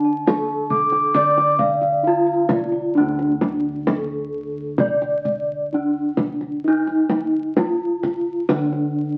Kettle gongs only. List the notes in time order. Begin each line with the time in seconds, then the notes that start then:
Already playing: D3 D4
0.27 D#4
1.15 D3
2.03 D#4
2.95 D4
3.00 D2
3.89 D#4
5.73 D#4
6.64 D#4
7.56 D#4
8.49 D3